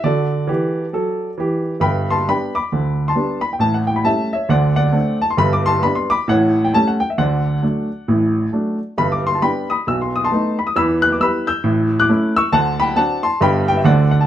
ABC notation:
X:1
M:4/4
L:1/16
Q:"Swing" 1/4=134
K:G
V:1 name="Upright piano"
[FAd]12- [FAd]2 z2 | [gb]2 [ac']2 [gb]2 [bd']4- [bd'] [ac']3 b g | a f g b [ea]2 [^ce]2 [df]2 [df]4 a =c' | b d' [ac']2 b c' [bd']2 [^cf]3 g a f g e |
[df]12- [df]2 z2 | b d' c' a [gb]2 [b_e']2 =e' c' ^d' [ac']3 b d' | [be']2 f' d' [be']2 [e'g']4- [e'g'] [d'f']3 [^c'e']2 | [fa]2 [gb]2 [fa]2 [ac']2 [gb]2 g e [df]2 f a |]
V:2 name="Upright piano" clef=bass
D,4 [E,G]4 [F,A]4 [E,G]4 | [G,,,G,,]4 [G,B,D]4 [D,,D,]4 [G,B,D]4 | [A,,,A,,]4 [G,A,^C]4 [D,,D,]4 [A,=CD]4 | [G,,,G,,]4 [G,B,D]4 [A,,,A,,]4 [G,A,^C]4 |
[D,,D,]4 [F,A,D]4 [A,,,A,,]4 [F,A,D]4 | [G,,,G,,]4 [G,B,D]4 [B,,,B,,]4 [A,B,^D]4 | [E,,E,]4 [G,B,E]4 [A,,,A,,]4 [A,^CE]4 | [D,,D,]4 [CDF]4 [G,,,G,,B,DG]4 [D,,D,A,DA]4 |]